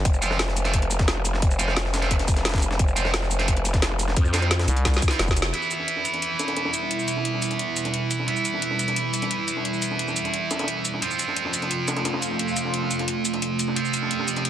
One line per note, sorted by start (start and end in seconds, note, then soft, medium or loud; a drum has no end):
0.05 1.41 F1 medium
0.05 kick loud
0.05 closed hi-hat medium
0.14 shaker soft
0.22 0.35 F3 medium
0.22 0.35 C4 medium
0.22 0.35 F4 medium
0.22 closed hi-hat medium
0.22 shaker medium
0.31 cross-stick soft
0.31 snare soft
0.39 snare loud
0.39 closed hi-hat medium
0.39 closed hi-hat loud
0.48 cross-stick soft
0.48 snare medium
0.57 closed hi-hat medium
0.57 shaker medium
0.65 0.73 F3 medium
0.65 0.73 C4 medium
0.65 0.73 F4 medium
0.65 snare medium
0.65 closed hi-hat soft
0.74 kick medium
0.74 closed hi-hat loud
0.74 closed hi-hat medium
0.82 closed hi-hat soft
0.91 closed hi-hat medium
0.91 shaker medium
0.99 kick loud
0.99 snare medium
0.99 closed hi-hat soft
1.08 snare loud
1.08 closed hi-hat medium
1.16 cross-stick soft
1.25 closed hi-hat medium
1.25 shaker medium
1.34 cross-stick soft
1.34 snare soft
1.42 2.78 F1 loud
1.42 kick loud
1.42 closed hi-hat medium
1.51 shaker soft
1.59 1.72 F3 medium
1.59 1.72 C4 medium
1.59 1.72 F4 loud
1.59 closed hi-hat medium
1.59 shaker medium
1.68 cross-stick soft
1.68 snare soft
1.76 snare loud
1.76 closed hi-hat medium
1.85 cross-stick soft
1.85 snare soft
1.94 snare loud
1.94 closed hi-hat medium
1.94 shaker medium
2.02 2.10 F3 medium
2.02 2.10 C4 medium
2.02 2.10 F4 medium
2.02 snare medium
2.02 closed hi-hat soft
2.11 kick medium
2.11 cross-stick soft
2.11 closed hi-hat medium
2.19 snare soft
2.19 closed hi-hat soft
2.28 kick loud
2.28 closed hi-hat medium
2.28 open hi-hat medium
2.28 shaker medium
2.37 snare soft
2.37 closed hi-hat soft
2.45 snare loud
2.45 snare medium
2.45 closed hi-hat medium
2.49 snare medium
2.49 closed hi-hat medium
2.54 kick loud
2.54 cross-stick soft
2.54 snare medium
2.54 closed hi-hat medium
2.58 snare medium
2.58 closed hi-hat medium
2.62 closed hi-hat medium
2.62 shaker medium
2.71 snare medium
2.79 4.15 F1 medium
2.79 kick loud
2.79 closed hi-hat loud
2.79 closed hi-hat medium
2.88 shaker soft
2.96 3.09 F3 medium
2.96 3.09 C4 medium
2.96 3.09 F4 medium
2.96 closed hi-hat medium
2.96 shaker medium
3.05 cross-stick soft
3.05 snare soft
3.14 snare loud
3.14 closed hi-hat loud
3.14 closed hi-hat medium
3.22 cross-stick soft
3.22 snare medium
3.31 closed hi-hat medium
3.31 shaker medium
3.39 3.47 F3 medium
3.39 3.47 C4 medium
3.39 3.47 F4 loud
3.39 snare medium
3.39 closed hi-hat soft
3.48 kick medium
3.48 closed hi-hat loud
3.48 closed hi-hat medium
3.57 closed hi-hat soft
3.65 closed hi-hat medium
3.65 shaker medium
3.74 kick loud
3.74 snare medium
3.74 closed hi-hat soft
3.82 snare loud
3.82 closed hi-hat loud
3.82 closed hi-hat medium
3.91 cross-stick soft
3.99 closed hi-hat medium
3.99 shaker medium
4.08 cross-stick soft
4.08 snare soft
4.16 4.67 F2 loud
4.16 kick loud
4.16 closed hi-hat loud
4.16 closed hi-hat medium
4.25 shaker soft
4.33 4.47 F3 medium
4.33 4.47 C4 loud
4.33 4.47 F4 loud
4.33 snare loud
4.33 closed hi-hat medium
4.33 shaker medium
4.42 cross-stick soft
4.42 closed hi-hat soft
4.51 snare loud
4.51 closed hi-hat loud
4.51 closed hi-hat medium
4.59 cross-stick soft
4.59 snare loud
4.59 closed hi-hat medium
4.68 5.01 C2 loud
4.68 closed hi-hat medium
4.68 shaker medium
4.77 closed hi-hat soft
4.85 kick medium
4.85 snare loud
4.85 snare medium
4.85 closed hi-hat medium
4.85 closed hi-hat loud
4.94 snare medium
4.94 closed hi-hat soft
4.94 shaker soft
5.02 kick loud
5.02 closed hi-hat medium
5.02 shaker medium
5.08 5.19 F4 loud
5.08 snare medium
5.11 5.19 F3 medium
5.11 5.19 C4 medium
5.11 snare loud
5.11 closed hi-hat medium
5.11 closed hi-hat soft
5.19 5.52 F1 loud
5.19 snare medium
5.19 snare loud
5.19 closed hi-hat loud
5.19 closed hi-hat medium
5.28 kick loud
5.28 snare loud
5.28 shaker soft
5.37 closed hi-hat medium
5.37 shaker medium
5.42 snare loud
5.45 snare medium
5.53 10.98 B2 medium
5.53 8.26 E3 medium
5.53 10.98 G3 medium
5.53 8.26 B3 medium
5.53 10.98 E4 medium
5.53 8.26 E4 medium
5.53 closed hi-hat medium
5.62 shaker soft
5.71 closed hi-hat medium
5.71 shaker medium
5.79 snare soft
5.88 closed hi-hat medium
5.96 snare medium
6.05 closed hi-hat medium
6.05 shaker medium
6.14 snare soft
6.14 closed hi-hat soft
6.22 closed hi-hat medium
6.39 snare loud
6.39 closed hi-hat medium
6.39 shaker medium
6.48 snare loud
6.48 closed hi-hat soft
6.57 snare loud
6.57 closed hi-hat medium
6.65 snare loud
6.74 closed hi-hat medium
6.74 shaker medium
6.82 snare soft
6.91 closed hi-hat medium
6.99 shaker soft
7.08 closed hi-hat medium
7.08 shaker medium
7.17 snare soft
7.25 closed hi-hat medium
7.34 snare soft
7.42 closed hi-hat medium
7.42 shaker medium
7.51 snare soft
7.51 closed hi-hat soft
7.59 closed hi-hat medium
7.76 closed hi-hat medium
7.76 open hi-hat medium
7.76 shaker medium
7.85 snare soft
7.85 closed hi-hat soft
7.94 closed hi-hat medium
8.11 closed hi-hat medium
8.11 shaker medium
8.19 snare soft
8.27 11.00 E3 medium
8.27 11.00 B3 medium
8.27 11.00 E4 medium
8.27 closed hi-hat medium
8.36 shaker soft
8.45 closed hi-hat medium
8.45 shaker medium
8.54 snare soft
8.62 closed hi-hat medium
8.71 snare medium
8.79 closed hi-hat medium
8.79 shaker medium
8.88 snare soft
8.88 closed hi-hat soft
8.96 closed hi-hat medium
9.14 closed hi-hat medium
9.14 shaker medium
9.22 snare medium
9.22 closed hi-hat soft
9.31 closed hi-hat medium
9.48 closed hi-hat medium
9.48 shaker medium
9.57 snare soft
9.65 closed hi-hat medium
9.74 shaker soft
9.82 closed hi-hat medium
9.82 shaker medium
9.91 snare soft
9.99 closed hi-hat medium
10.08 snare soft
10.08 shaker soft
10.16 closed hi-hat medium
10.16 shaker medium
10.25 snare soft
10.25 closed hi-hat soft
10.34 closed hi-hat medium
10.51 snare loud
10.51 closed hi-hat medium
10.51 shaker medium
10.59 snare medium
10.59 closed hi-hat soft
10.59 closed hi-hat medium
10.64 snare medium
10.68 closed hi-hat medium
10.85 closed hi-hat medium
10.85 shaker medium
10.94 snare medium
11.02 14.50 C3 medium
11.02 13.74 F3 medium
11.02 14.50 A3 medium
11.02 13.74 C4 medium
11.02 13.74 F4 medium
11.02 closed hi-hat medium
11.11 shaker soft
11.19 closed hi-hat medium
11.19 shaker medium
11.28 snare soft
11.36 closed hi-hat medium
11.45 snare medium
11.54 closed hi-hat medium
11.54 shaker medium
11.62 snare soft
11.62 closed hi-hat soft
11.71 closed hi-hat medium
11.88 snare loud
11.88 closed hi-hat medium
11.88 shaker medium
11.97 snare loud
11.97 closed hi-hat soft
11.97 closed hi-hat medium
12.05 snare loud
12.05 closed hi-hat medium
12.14 snare loud
12.22 closed hi-hat medium
12.22 shaker medium
12.31 snare soft
12.39 closed hi-hat medium
12.48 shaker soft
12.56 closed hi-hat medium
12.56 shaker medium
12.65 snare soft
12.74 closed hi-hat medium
12.82 snare soft
12.91 closed hi-hat medium
12.91 shaker medium
12.99 snare soft
12.99 closed hi-hat soft
13.08 closed hi-hat medium
13.25 closed hi-hat medium
13.25 open hi-hat medium
13.25 shaker medium
13.34 snare soft
13.34 closed hi-hat soft
13.42 closed hi-hat medium
13.59 closed hi-hat medium
13.59 shaker medium
13.68 snare medium
13.76 14.50 F3 medium
13.76 14.50 C4 medium
13.76 14.50 F4 medium
13.76 14.50 G4 medium
13.76 closed hi-hat medium
13.85 shaker soft
13.94 closed hi-hat medium
13.94 shaker medium
14.02 snare soft
14.11 closed hi-hat medium
14.19 snare medium
14.28 closed hi-hat medium
14.28 shaker medium
14.36 snare soft
14.36 closed hi-hat soft
14.45 closed hi-hat loud
14.45 closed hi-hat medium